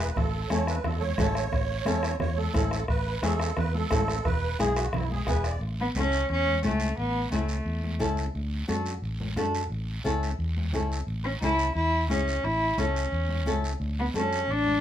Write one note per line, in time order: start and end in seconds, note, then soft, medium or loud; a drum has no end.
0.00 0.17 B4 medium
0.00 bombo rim medium
0.00 short guiro medium
0.16 0.44 A1 medium
0.16 0.51 A4 loud
0.16 bombo low medium
0.16 bombo rim medium
0.16 low conga medium
0.16 long guiro medium
0.49 0.77 E2 medium
0.49 0.74 C#4 medium
0.49 0.74 E4 medium
0.49 0.75 A4 medium
0.49 0.67 C#5 medium
0.49 bombo rim medium
0.49 high conga medium
0.49 short guiro medium
0.67 0.85 B4 medium
0.67 bombo rim medium
0.67 short guiro medium
0.84 1.11 E2 medium
0.84 1.02 A4 medium
0.84 bombo rim medium
0.84 low conga medium
0.84 long guiro medium
1.00 2.16 C#5 loud
1.00 high conga medium
1.18 1.45 A1 medium
1.18 1.42 C#4 medium
1.18 1.43 E4 medium
1.18 1.43 A4 medium
1.18 bombo low medium
1.18 bombo rim medium
1.18 high conga medium
1.18 low conga medium
1.18 short guiro medium
1.35 bombo rim medium
1.35 short guiro medium
1.52 1.80 A1 loud
1.52 bombo low medium
1.52 bombo rim medium
1.52 low conga medium
1.52 long guiro medium
1.85 2.13 E2 medium
1.85 2.10 C#4 medium
1.85 2.10 E4 medium
1.85 2.11 A4 medium
1.85 bombo rim medium
1.85 high conga medium
1.85 short guiro medium
2.03 bombo rim medium
2.03 short guiro medium
2.20 2.48 E2 medium
2.20 2.38 C#5 loud
2.20 bombo rim medium
2.20 low conga medium
2.20 long guiro medium
2.37 2.85 A4 medium
2.37 high conga medium
2.54 2.82 A1 loud
2.54 2.78 C#4 medium
2.54 2.78 E4 medium
2.54 2.79 A4 medium
2.54 bombo low medium
2.54 bombo rim medium
2.54 high conga medium
2.54 short guiro medium
2.71 bombo rim medium
2.71 short guiro medium
2.88 3.16 A1 medium
2.88 3.24 B4 loud
2.88 bombo low medium
2.88 bombo rim medium
2.88 long guiro medium
3.22 3.50 E2 medium
3.22 3.47 C#4 medium
3.22 3.47 E4 medium
3.22 3.47 G#4 medium
3.22 3.58 A4 medium
3.22 bombo rim medium
3.22 high conga medium
3.22 short guiro medium
3.40 bombo rim medium
3.40 short guiro medium
3.57 3.84 E2 medium
3.57 3.73 B4 medium
3.57 bombo rim medium
3.57 low conga medium
3.57 long guiro medium
3.74 4.26 A4 loud
3.74 high conga medium
3.90 4.18 A1 loud
3.90 4.14 C#4 medium
3.90 4.14 E4 medium
3.90 4.15 A4 medium
3.90 bombo low medium
3.90 bombo rim medium
3.90 high conga medium
3.90 low conga medium
3.90 short guiro medium
4.08 bombo rim medium
4.08 short guiro medium
4.25 4.52 E1 loud
4.25 4.60 B4 loud
4.25 bombo low medium
4.25 bombo rim medium
4.25 low conga medium
4.25 long guiro medium
4.59 4.87 B1 medium
4.59 4.83 B3 medium
4.59 4.83 E4 medium
4.59 4.83 G#4 medium
4.59 4.75 G#4 medium
4.59 bombo rim medium
4.59 high conga medium
4.59 short guiro medium
4.76 4.92 F#4 medium
4.76 bombo rim medium
4.76 short guiro medium
4.93 5.20 B1 medium
4.93 5.10 E4 medium
4.93 bombo rim medium
4.93 low conga medium
4.93 long guiro medium
5.11 5.28 G#4 loud
5.11 high conga medium
5.27 5.54 E1 loud
5.27 5.51 B3 medium
5.27 5.51 E4 medium
5.27 5.52 G#4 medium
5.27 5.46 B4 medium
5.27 bombo low medium
5.27 bombo rim medium
5.27 high conga medium
5.27 short guiro medium
5.44 5.61 D5 medium
5.44 bombo rim medium
5.44 short guiro medium
5.59 5.88 A1 medium
5.59 long guiro medium
5.81 5.88 B3 medium
5.95 6.22 C#2 medium
5.95 6.20 C#4 medium
5.95 6.28 C#4 medium
5.95 6.20 E4 medium
5.95 6.20 A4 medium
5.95 high conga medium
5.95 short guiro medium
6.12 short guiro medium
6.29 6.65 E2 medium
6.29 6.62 C#4 medium
6.29 long guiro medium
6.47 high conga medium
6.63 6.91 C#2 medium
6.63 6.96 A3 medium
6.63 6.87 C#4 medium
6.63 6.87 E4 medium
6.63 6.88 A4 medium
6.63 high conga medium
6.63 short guiro medium
6.80 short guiro medium
6.97 7.25 A1 medium
6.97 7.29 B3 medium
6.97 long guiro medium
7.31 7.59 C#2 medium
7.31 7.96 A3 medium
7.31 7.56 C#4 medium
7.31 7.56 E4 medium
7.31 7.56 A4 medium
7.31 high conga medium
7.31 short guiro medium
7.49 short guiro medium
7.65 8.01 E2 medium
7.65 long guiro medium
7.83 high conga medium
7.99 8.27 C#2 medium
7.99 8.24 C#4 medium
7.99 8.24 E4 medium
7.99 8.24 A4 medium
7.99 high conga medium
7.99 short guiro medium
8.17 short guiro medium
8.35 8.62 D2 medium
8.35 long guiro medium
8.68 8.96 F#2 medium
8.68 8.92 D4 medium
8.68 8.92 F#4 medium
8.68 8.92 A4 medium
8.68 high conga medium
8.68 short guiro medium
8.86 short guiro medium
9.02 9.36 A1 medium
9.02 long guiro medium
9.20 high conga medium
9.36 9.64 F#2 medium
9.36 9.61 D4 medium
9.36 9.61 F#4 medium
9.36 9.61 A4 medium
9.36 high conga medium
9.36 short guiro medium
9.55 short guiro medium
9.70 9.98 A1 loud
9.70 long guiro medium
10.04 10.32 C#2 medium
10.04 10.29 C#4 medium
10.04 10.29 E4 medium
10.04 10.29 A4 medium
10.04 high conga medium
10.04 short guiro medium
10.23 short guiro medium
10.39 10.73 E2 medium
10.39 long guiro medium
10.57 high conga medium
10.73 11.01 C#2 medium
10.73 10.97 C#4 medium
10.73 10.98 E4 medium
10.73 10.98 A4 medium
10.73 high conga medium
10.73 short guiro medium
10.92 short guiro medium
11.07 11.34 A1 medium
11.07 long guiro medium
11.24 11.32 C#4 medium
11.41 11.69 C#2 medium
11.41 11.66 C#4 medium
11.41 11.73 E4 medium
11.41 11.66 E4 medium
11.41 11.66 A4 medium
11.41 high conga medium
11.41 short guiro medium
11.59 short guiro medium
11.75 12.10 E2 medium
11.75 12.07 E4 medium
11.75 long guiro medium
12.09 12.37 C#2 medium
12.09 12.34 C#4 medium
12.09 12.46 C#4 medium
12.09 12.34 E4 medium
12.09 12.34 G#4 medium
12.09 high conga medium
12.09 short guiro medium
12.28 short guiro medium
12.44 12.71 A1 medium
12.44 12.80 E4 medium
12.44 long guiro medium
12.78 13.05 C#2 medium
12.78 13.47 C#4 medium
12.78 13.02 C#4 medium
12.78 13.02 E4 medium
12.78 13.03 A4 medium
12.78 high conga medium
12.78 short guiro medium
12.96 short guiro medium
13.12 13.46 E2 medium
13.12 long guiro medium
13.29 high conga medium
13.46 13.74 C#2 medium
13.46 13.70 C#4 medium
13.46 13.70 E4 medium
13.46 13.71 A4 medium
13.46 high conga medium
13.46 short guiro medium
13.64 short guiro medium
13.80 14.08 D2 medium
13.80 long guiro medium
13.99 14.07 B3 medium
14.14 14.42 F#2 medium
14.14 14.53 C#4 medium
14.14 14.38 D4 medium
14.14 14.39 F#4 medium
14.14 14.39 A4 medium
14.14 high conga medium
14.14 short guiro medium
14.33 short guiro medium
14.48 14.80 A1 medium
14.48 14.80 D4 loud
14.48 long guiro medium
14.65 high conga medium